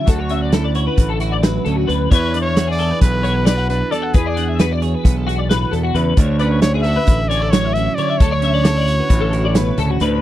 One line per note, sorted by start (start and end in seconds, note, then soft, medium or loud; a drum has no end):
0.00 0.57 F#3 medium
0.00 0.57 F#4 medium
0.06 0.88 D2 medium
0.06 1.87 D3 medium
0.06 0.55 F#4 medium
0.06 0.19 A4 medium
0.06 kick loud
0.06 closed hi-hat medium
0.19 0.31 C#5 medium
0.29 1.66 C#4 medium
0.29 0.42 E5 medium
0.29 closed hi-hat medium
0.42 0.54 D5 medium
0.52 1.20 E4 medium
0.52 0.65 A4 medium
0.52 snare loud
0.52 closed hi-hat medium
0.64 0.75 D5 medium
0.75 2.14 F#4 medium
0.75 0.86 C#5 medium
0.75 closed hi-hat medium
0.87 1.10 B4 medium
0.97 1.58 A1 loud
0.97 1.88 A2 medium
0.97 kick loud
0.97 closed hi-hat medium
1.09 1.20 A4 medium
1.20 2.38 E4 medium
1.20 1.32 F#4 medium
1.20 snare soft
1.20 closed hi-hat medium
1.32 1.43 D5 medium
1.43 2.14 F#3 medium
1.43 1.66 B4 medium
1.43 snare loud
1.43 closed hi-hat medium
1.65 1.86 D2 medium
1.65 2.10 C#4 medium
1.65 1.76 A4 medium
1.65 closed hi-hat medium
1.76 1.88 F#4 medium
1.88 2.09 D2 medium
1.88 2.08 D3 medium
1.88 2.10 B4 medium
1.88 closed hi-hat medium
2.11 3.91 E2 medium
2.11 2.91 E2 loud
2.11 2.40 B4 loud
2.11 2.34 C#5 medium
2.11 kick loud
2.11 closed hi-hat medium
2.34 3.70 D4 medium
2.34 2.45 D5 medium
2.34 closed hi-hat medium
2.41 2.69 C#5 loud
2.46 2.68 C#5 medium
2.56 3.24 F#4 medium
2.56 snare loud
2.56 closed hi-hat medium
2.67 2.79 G#4 medium
2.67 2.99 D5 loud
2.78 4.12 G#4 medium
2.78 2.90 A4 medium
2.78 closed hi-hat medium
2.90 3.13 B4 medium
3.01 3.81 B1 medium
3.01 3.47 B2 medium
3.01 3.44 B4 loud
3.01 kick loud
3.01 snare soft
3.01 closed hi-hat medium
3.23 4.18 F#4 medium
3.23 3.35 C#5 medium
3.23 closed hi-hat medium
3.35 3.45 B4 medium
3.45 6.22 E3 medium
3.45 3.68 B4 medium
3.45 3.57 D5 medium
3.45 snare loud
3.45 closed hi-hat loud
3.57 3.80 F#5 medium
3.70 4.18 D4 medium
3.70 3.93 B4 medium
3.70 snare soft
3.70 closed hi-hat medium
3.91 4.14 E2 medium
3.91 4.15 A4 medium
3.91 4.02 D5 medium
3.91 snare soft
3.91 closed hi-hat medium
4.02 4.14 F#5 medium
4.14 4.94 E2 medium
4.14 6.18 E2 medium
4.14 4.65 G#4 medium
4.14 4.26 B4 medium
4.14 kick loud
4.14 closed hi-hat medium
4.26 4.37 D5 medium
4.37 6.41 D4 medium
4.37 4.48 F#5 medium
4.37 closed hi-hat medium
4.48 4.60 E5 medium
4.59 5.27 F#4 medium
4.59 4.72 B4 medium
4.59 snare loud
4.59 closed hi-hat medium
4.72 4.82 D5 medium
4.82 6.15 G#4 medium
4.82 4.94 C#5 medium
4.82 snare soft
4.82 closed hi-hat medium
4.94 5.16 B4 medium
5.04 5.64 B1 medium
5.04 5.49 B2 medium
5.04 kick loud
5.04 snare soft
5.04 closed hi-hat medium
5.16 5.26 A4 medium
5.27 5.38 F#4 medium
5.27 6.64 F#4 medium
5.27 snare soft
5.27 closed hi-hat medium
5.38 5.49 D5 medium
5.49 5.72 A2 medium
5.49 5.72 B4 medium
5.49 snare loud
5.49 closed hi-hat medium
5.72 5.92 E2 medium
5.72 5.95 B2 medium
5.72 5.83 A4 medium
5.72 closed hi-hat medium
5.83 5.95 F#4 medium
5.95 6.15 E2 medium
5.95 6.18 C#3 medium
5.95 6.17 B4 medium
5.95 closed hi-hat medium
6.17 6.97 D2 loud
6.17 7.97 D3 medium
6.17 6.39 C#5 medium
6.17 kick loud
6.17 closed hi-hat loud
6.38 7.30 C#4 medium
6.38 6.60 B4 medium
6.38 6.51 D5 medium
6.38 closed hi-hat medium
6.51 6.74 C#5 medium
6.62 7.31 E4 medium
6.62 6.72 C#5 medium
6.62 snare loud
6.62 closed hi-hat loud
6.74 6.84 G#4 medium
6.82 6.96 A4 medium
6.82 7.30 E5 loud
6.82 closed hi-hat medium
6.88 8.68 F#4 medium
6.96 7.19 B4 medium
7.07 7.87 A1 medium
7.07 7.98 A2 medium
7.07 kick loud
7.07 closed hi-hat loud
7.28 7.42 C#4 medium
7.28 7.41 C#5 medium
7.28 7.52 D5 medium
7.28 closed hi-hat medium
7.41 8.21 E4 medium
7.41 7.52 A4 medium
7.50 8.68 F#3 medium
7.50 7.75 C#5 loud
7.50 7.65 C#5 medium
7.50 snare loud
7.50 closed hi-hat loud
7.65 7.87 E5 medium
7.73 7.96 E5 medium
7.73 closed hi-hat medium
7.78 8.19 C#4 medium
7.95 8.18 D3 medium
7.95 8.08 C#5 medium
7.95 8.19 D5 medium
7.95 closed hi-hat medium
8.08 8.20 E5 medium
8.18 9.00 D2 loud
8.18 9.54 D3 medium
8.18 8.31 A4 medium
8.18 9.99 C#5 loud
8.18 kick loud
8.18 closed hi-hat medium
8.31 8.43 C#5 medium
8.42 10.20 C#4 medium
8.42 8.53 E5 medium
8.42 closed hi-hat medium
8.54 8.65 D5 medium
8.65 9.33 E4 medium
8.65 8.76 A4 medium
8.65 snare loud
8.65 closed hi-hat medium
8.77 8.88 D5 medium
8.88 10.20 F#4 medium
8.88 8.99 C#5 medium
8.88 closed hi-hat medium
8.99 9.22 B4 medium
9.09 9.70 A1 loud
9.09 10.20 A2 medium
9.09 kick loud
9.09 closed hi-hat medium
9.20 9.33 A4 medium
9.33 10.21 E4 medium
9.33 9.44 F#4 medium
9.33 closed hi-hat medium
9.45 9.56 D5 medium
9.54 9.78 B2 medium
9.54 9.78 B4 medium
9.54 snare loud
9.54 closed hi-hat medium
9.78 9.98 D2 medium
9.78 10.01 C#3 medium
9.78 9.90 A4 medium
9.78 snare soft
9.78 closed hi-hat medium
9.90 10.01 F#4 medium
10.00 10.21 D2 medium
10.00 10.21 D3 medium
10.00 10.21 B4 medium
10.00 snare soft
10.00 closed hi-hat medium